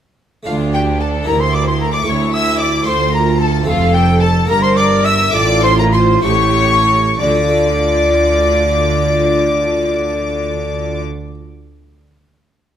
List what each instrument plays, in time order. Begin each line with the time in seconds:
0.43 harpsichord A3 D4 F4, flute F5, violin section F5
0.47 double bass section D2, harpsichord D2, cello section D2, viola section D4, violin section F4
0.73 violin section G4 G5, flute G5
0.99 violin section A4 A5, flute A5
1.23 harpsichord A#3 E4 G4, viola section E4, flute A#5
1.27 cello section D2, double bass section D2, harpsichord D2, violin section A#4 A#5
1.40 violin section C5 C6, flute C6
1.53 violin section D5 D6, flute D6
1.66 violin section C5 C6, flute C6
1.79 violin section A#4 A#5, flute A#5
1.93 violin section D5 D6, flute D6
2.03 harpsichord A3 E4 A4, violin section C#5
2.07 harpsichord D2, cello section D2, double bass section D2, viola section E4, flute C#6, violin section C#6
2.33 violin section E5 E6, flute E6
2.60 violin section D5 D6, flute D6
2.83 harpsichord A3 F4 A4, violin section C5 C6, flute C6
2.87 cello section D2, harpsichord D2, double bass section D2, viola section F4
3.13 violin section A#4 A#5, flute A#5
3.40 violin section A4 A5, flute A5
3.63 harpsichord A3 C4 A4, flute F5
3.67 double bass section F1, cello section F2, harpsichord F2, violin section F4 F5, viola section A4
3.93 violin section G4 G5, flute G5
4.20 violin section A4 A5, flute A5
4.45 double bass section G1, harpsichord G2 A#3 A#4, cello section G2, viola section A#4, violin section A#4 A#5, flute A#5
4.62 violin section C5 C6, flute C6
4.76 violin section D5 D6, flute D6
5.04 violin section E5 E6, flute E6
5.31 double bass section A1, harpsichord A2 D4 A4, cello section A2, viola section F4, violin section D5 D6, flute D6
5.63 violin section C5 C6, flute C6
5.78 violin section A#4 A#5, flute A#5
5.93 violin section C5 C6, flute C6
6.21 double bass section A1, cello section A2, harpsichord A2 E4 A4, viola section G4, violin section C#5 C#6, flute C#6
7.20 double bass section D2, harpsichord D3, cello section D3, viola section F4, violin section D5 D6, flute D5
7.28 harpsichord A3
7.35 harpsichord D4
7.42 harpsichord F4
7.48 harpsichord A4
7.56 harpsichord F5